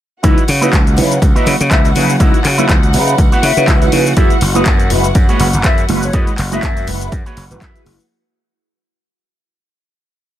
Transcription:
0.23 C#2 F#3 D#4 E4 F#4 B4 D#5 F#5, kick, closed hi-hat, tambourine, shaker
0.38 closed hi-hat, shaker
0.48 C#3, open hi-hat, tambourine
0.61 F#3 D#4 E4 F#4 B4 D#5, closed hi-hat, tambourine, high conga, shaker
0.72 C#2, kick, clap, closed hi-hat, tambourine, shaker
0.86 muted clean electric guitar stroke, closed hi-hat, shaker
0.96 C#3 F#3 D#4 E4 B4, open hi-hat, tambourine
1.11 muted clean electric guitar stroke, closed hi-hat, tambourine, shaker
1.22 C#2, kick, closed hi-hat, tambourine, shaker
1.35 F#3 D#4 E4 F#4 B4 D#5, closed hi-hat, tambourine, high conga, shaker
1.46 C#3, open hi-hat, tambourine
1.60 C#3, closed hi-hat, tambourine, shaker
1.70 C#2 E4 F#4 B4 D#5 E5, kick, clap, closed hi-hat, tambourine, shaker
1.84 closed hi-hat, tambourine, shaker
1.95 C#3 F#3 D#4 E4 B4, open hi-hat, tambourine, high conga, low conga
2.09 muted clean electric guitar stroke, tambourine, shaker
2.20 C#2 F#3 D#4 E4 F#4 B4 D#5, kick, closed hi-hat, tambourine, shaker
2.34 closed hi-hat, shaker
2.44 C#3, clap, open hi-hat, tambourine
2.58 F#3 D#4 E4 F#4 B4 E5, closed hi-hat, tambourine, high conga, shaker
2.68 C#2, kick, clap, closed hi-hat, tambourine, shaker
2.82 muted clean electric guitar stroke, closed hi-hat, shaker
2.93 C#3 F#3 D#4 E4 B4, open hi-hat, tambourine
3.07 muted clean electric guitar stroke, tambourine, shaker
3.18 C#2, kick, closed hi-hat, tambourine, shaker
3.32 E4 F#4 B4 F#5, closed hi-hat, tambourine, high conga, shaker
3.43 C#3 E5, open hi-hat, tambourine
3.56 C#3 F#3 D#4 E4 B4, closed hi-hat, tambourine, shaker
3.67 C#2 E4 F#4 B4 D#5, kick, clap, closed hi-hat, tambourine, shaker
3.81 F#3 D#4 E4 B4, closed hi-hat, tambourine, shaker
3.92 C#3, open hi-hat, tambourine, high conga, low conga
4.06 muted clean electric guitar stroke, tambourine, shaker
4.16 F#2 G#3 E4 F#4 G#4 B4 E5, kick, closed hi-hat, tambourine, shaker
4.30 closed hi-hat, shaker
4.41 F#1, open hi-hat, tambourine
4.55 G#3 E4 F#4 G#4 B4 D#5, closed hi-hat, tambourine, high conga, shaker
4.66 F#2, kick, clap, closed hi-hat, tambourine, shaker
4.79 muted clean electric guitar stroke, closed hi-hat, shaker
4.90 F#1 G#3 E4 F#4 B4, open hi-hat, tambourine
5.04 muted clean electric guitar stroke, closed hi-hat, tambourine, shaker
5.15 F#2, kick, closed hi-hat, tambourine, shaker
5.28 G#3 E4 F#4 G#4 B4 C#5, closed hi-hat, tambourine, high conga, shaker
5.40 F#1, open hi-hat, tambourine
5.53 F#1, closed hi-hat, tambourine, shaker
5.64 F#2 F#4 G#4 B4 E5, kick, clap, closed hi-hat, tambourine, shaker
5.78 closed hi-hat, tambourine, shaker
5.89 F#1 G#3 E4 F#4 B4, open hi-hat, tambourine, high conga, low conga
6.02 C#5, muted clean electric guitar stroke, tambourine, shaker
6.13 F#2 G#3 E4 F#4 G#4 B4 D#5, kick, closed hi-hat, tambourine, shaker
6.27 closed hi-hat, shaker
6.38 F#1, clap, open hi-hat, tambourine
6.51 G#3 E4 F#4 G#4 B4 D#5 E5, closed hi-hat, tambourine, high conga, shaker
6.63 kick, clap, closed hi-hat, tambourine, shaker
6.76 muted clean electric guitar stroke, closed hi-hat, tambourine, shaker
6.87 F#1 G#3 E4 F#4 B4, open hi-hat, tambourine
7.01 muted clean electric guitar stroke, closed hi-hat, tambourine, shaker
7.12 F#2, kick, closed hi-hat, tambourine, shaker
7.26 F#4 G#4 B4 C#5, closed hi-hat, tambourine, high conga, shaker
7.37 F#1, open hi-hat, tambourine
7.50 F#1 G#3 E4 F#4 B4, closed hi-hat, tambourine, low conga, shaker
7.61 F#2 F#4 G#4 B4 E5, kick, clap, closed hi-hat, tambourine, shaker
7.75 G#3 E4 F#4 B4, closed hi-hat, tambourine, shaker
7.85 F#1, open hi-hat, tambourine, high conga, low conga
7.99 muted clean electric guitar stroke, tambourine, shaker

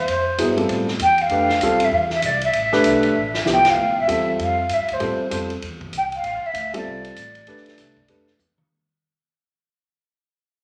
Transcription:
Already playing: C5
0.08 F2, ride
0.38 G2 F#3 B3 E4 G#4, hi-hat pedal, ride
0.57 G3 C4 F4 A4, ride
0.69 A2, ride
0.88 snare
0.99 E2 G5, hi-hat pedal, ride
1.18 F5, ride
1.29 F2 A3 D4 G4 B4, ride
1.49 snare
1.61 D2 G3 C4 F4 A4, hi-hat pedal, ride
1.72 C2
1.80 A1, ride
1.84 E5
1.91 E2 F5
2.10 E5, snare
2.22 C2 D5, hi-hat pedal, ride
2.41 E5, ride
2.53 A1, ride
2.72 A3 D4 G4 B4, snare
2.84 B1, hi-hat pedal, ride
3.03 ride
3.16 A1
3.34 snare
3.45 C2 F3 B3 E4 G4, snare, hi-hat pedal
3.52 G5
3.65 snare, ride
3.70 F5
3.77 D2
3.88 C2
3.98 A1 E5
4.08 E2 G3 C4 F4 A4, hi-hat pedal, ride
4.39 F2 F5, ride
4.69 G2, hi-hat pedal, ride
4.73 E5
4.79 F2
4.88 D2, ride
4.93 C5
5.00 A2 G3 C4 F4 A4, ride
5.19 muted upright bass stroke
5.30 F2 G3 C4 F4 A4, hi-hat pedal, ride
5.50 ride
5.62 E2, ride
5.81 kick
5.92 C2, hi-hat pedal, ride
5.97 G5
6.12 F5, ride
6.23 A1, ride
6.43 E5, muted upright bass stroke
6.54 D2, hi-hat pedal, ride
6.73 G3 C4 F4 A4 D5, ride
6.85 C2
7.04 ride
7.16 A1, hi-hat pedal, ride
7.35 ride
7.47 D2 A3 D4 G4 B4, ride
7.57 snare
7.66 snare, ride
7.78 C2, snare, hi-hat pedal, ride
7.97 kick
8.08 F2 A3 D4 G4 B4, ride
8.27 snare
8.39 E2, hi-hat pedal, high tom
8.58 mid tom

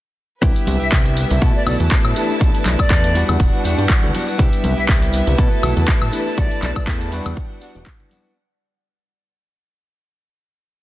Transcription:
0.42 C2 G3 B3 D4 E4 G4 B4 E5, kick, closed hi-hat, tambourine
0.56 open hi-hat, tambourine
0.67 C2, open hi-hat, tambourine, high conga
0.80 C2 E4 G4 E5, tambourine
0.91 C2 B3 E5, kick, clap, closed hi-hat, tambourine
1.05 closed hi-hat, tambourine
1.17 open hi-hat, tambourine
1.30 C2 E4 G4, closed hi-hat, tambourine, low conga
1.41 B2 F#3 A3 B3 E4 F#4 A4 B4 A5, kick, closed hi-hat, tambourine
1.54 B3 E4 A4 D5, tambourine
1.66 B1 F#3 B3 E4 A4 D5, open hi-hat, tambourine, low conga, high woodblock
1.80 E2, closed hi-hat, tambourine, low conga
1.91 F#3 B3 E4 A4, kick, clap, closed hi-hat, tambourine
2.04 A2, tambourine, high woodblock
2.15 E3 A3 B3 D4 E4 G4 A4 B4, open hi-hat, tambourine
2.29 B3 D4 A4, tambourine
2.40 B1 E3 B3 D4 A4, kick, closed hi-hat
2.55 open hi-hat, tambourine
2.65 B1, clap, open hi-hat, tambourine, high conga
2.78 E2 B3 D4 A4 D5, kick, closed hi-hat, tambourine, high conga, high woodblock
2.90 E2 E3 B3 D4 A4, kick, clap, closed hi-hat, tambourine
3.04 closed hi-hat
3.15 G3 B3 D4 E4 F#4 B4 F#5, open hi-hat, tambourine
3.28 E2, closed hi-hat, tambourine, low conga, high woodblock
3.40 E1, kick, closed hi-hat, tambourine
3.52 B3 D4 F#4, tambourine
3.64 E2 G3 B3 D4 F#4, open hi-hat, tambourine
3.78 G2, closed hi-hat, tambourine
3.89 G3 B3, kick, clap, closed hi-hat, tambourine
4.03 D2, closed hi-hat, tambourine, low conga
4.13 G3 B3 D4 F#4, open hi-hat, tambourine, high conga
4.27 B3 D4 F#4, tambourine
4.38 C2 G3 B3 D4 E4 G4 B4 E5, kick, closed hi-hat, tambourine
4.53 open hi-hat, tambourine
4.63 C2, open hi-hat, tambourine, high conga
4.76 C2 B3 E4 G4 E5, tambourine
4.88 C2 G3 E4 E5, kick, clap, closed hi-hat, tambourine
5.02 closed hi-hat, tambourine
5.13 open hi-hat, tambourine
5.26 C2 B3 E4 G4, closed hi-hat, tambourine, low conga
5.38 B2 F#3 A3 B3 E4 F#4 A4 B4 A5, kick, closed hi-hat, tambourine
5.51 B3 E4 A4, tambourine
5.62 B1 F#3 B3 E4 A4, open hi-hat, tambourine, low conga, high woodblock
5.76 E2, closed hi-hat, tambourine, low conga
5.88 B3 E4 A4, kick, clap, closed hi-hat, tambourine
6.02 A2, tambourine, high woodblock
6.12 E3 A3 B3 D4 E4 G4 A4 B4, open hi-hat, tambourine
6.26 B3 D4 A4, tambourine
6.37 B1 E3 B3 D4 A4 D5, kick, closed hi-hat, tambourine
6.51 open hi-hat, tambourine
6.62 B1 D5, clap, open hi-hat, tambourine, high conga
6.75 E2 B3 D4 A4 D5, kick, closed hi-hat, tambourine, high conga, high woodblock
6.87 E2 E3 B3 D4 A4, kick, clap, closed hi-hat, tambourine
7.01 closed hi-hat, tambourine
7.12 G3 B3 D4 E4 F#4 B4 F#5, open hi-hat, tambourine
7.25 E2, closed hi-hat, tambourine, low conga, high woodblock
7.37 kick, closed hi-hat, tambourine
7.49 B3 D4 F#4, tambourine
7.61 G3 B3 D4 F#4, open hi-hat, tambourine
7.75 E1, closed hi-hat, tambourine
7.86 G3, kick, clap, closed hi-hat, tambourine
7.99 B3 D4 F#4, closed hi-hat, tambourine, low conga
8.10 G3 B3 D4 F#4, open hi-hat, tambourine, high conga
8.23 B3 D4 F#4, tambourine

